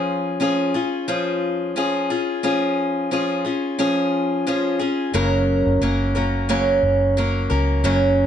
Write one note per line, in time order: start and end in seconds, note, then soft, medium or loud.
0.00 0.39 F3 medium
0.00 0.40 C#4 medium
0.00 0.40 F4 medium
0.00 0.41 G#4 medium
0.40 0.74 F3 soft
0.40 0.75 C#4 medium
0.40 0.74 F4 medium
0.40 0.73 G#4 medium
0.74 1.07 C#4 soft
0.74 1.07 F4 soft
0.74 1.08 G#4 soft
1.08 1.75 F3 medium
1.08 1.76 C#4 medium
1.08 1.76 F4 medium
1.08 1.76 G#4 medium
1.76 2.10 F3 medium
1.76 2.10 C#4 medium
1.76 2.10 F4 medium
1.76 2.09 G#4 medium
2.10 2.42 C#4 soft
2.10 2.43 F4 soft
2.10 2.43 G#4 medium
2.43 3.10 F3 medium
2.43 3.11 C#4 medium
2.43 3.12 F4 medium
2.43 3.12 G#4 medium
3.11 3.45 F3 soft
3.11 3.45 C#4 medium
3.11 3.44 F4 soft
3.11 3.43 G#4 medium
3.45 3.78 C#4 soft
3.45 3.78 F4 soft
3.45 3.79 G#4 soft
3.79 4.45 F3 medium
3.79 4.47 C#4 medium
3.79 4.47 F4 medium
3.79 4.47 G#4 medium
4.47 4.80 F3 medium
4.47 4.80 C#4 medium
4.47 4.79 F4 medium
4.47 4.78 G#4 medium
4.79 5.13 C#4 soft
4.79 5.14 F4 soft
4.79 5.14 G#4 medium
5.14 5.62 F#1 medium
5.14 5.81 F#2 medium
5.14 5.82 C#3 medium
5.14 5.81 F#3 medium
5.14 5.81 A#3 medium
5.14 5.82 C#4 medium
5.14 5.82 A#4 medium
5.66 5.80 F#1 medium
5.81 6.79 F#1 medium
5.81 6.15 F#3 medium
5.81 6.15 A#3 soft
5.81 6.15 C#4 medium
5.81 6.14 A#4 medium
6.15 6.48 F#3 soft
6.15 6.48 A#3 soft
6.15 6.49 C#4 soft
6.15 6.49 A#4 soft
6.49 7.17 F#2 medium
6.49 7.17 C#3 medium
6.49 7.17 F#3 medium
6.49 7.17 A#3 medium
6.49 7.18 C#4 medium
6.49 7.17 A#4 medium
6.83 7.46 F#1 medium
7.17 7.51 F#3 medium
7.17 7.50 A#3 medium
7.17 7.50 C#4 medium
7.17 7.49 A#4 medium
7.50 7.82 C#2 medium
7.50 7.83 F#3 soft
7.50 7.84 A#3 soft
7.50 7.84 C#4 soft
7.50 7.84 A#4 medium
7.84 8.27 F#1 medium
7.84 8.27 F#2 medium
7.84 8.27 C#3 medium
7.84 8.27 F#3 medium
7.84 8.27 A#3 medium
7.84 8.27 C#4 medium
7.84 8.27 A#4 medium